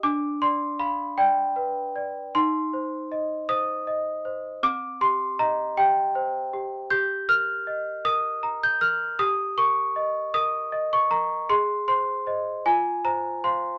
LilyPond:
\new Staff \with { instrumentName = "Celesta" } { \time 6/8 \key c \minor \tempo 4. = 52 << { d'''8 c'''8 b''8 g''4. | c'''4. ees'''4. | d'''8 c'''8 bes''8 g''4. | \key ees \major g'''8 f'''4 ees'''8. g'''16 f'''8 |
ees'''8 des'''4 ees'''8. des'''16 bes''8 | c'''8 c'''4 aes''8 bes''8 c'''8 | } \\ { d'8 d''8 f''8 d''8 b'8 d''8 | ees'8 c''8 ees''8 c''8 ees''8 c''8 | c'8 g'8 ees''8 g'8 c''8 g'8 | g'8 bes'8 ees''8 bes'8 bes''8 bes'8 |
g'8 bes'8 ees''8 bes'8 ees''8 bes'8 | aes'8 c''8 <c'' ees''>8 f'8 c''8 <c'' f''>8 | } >> }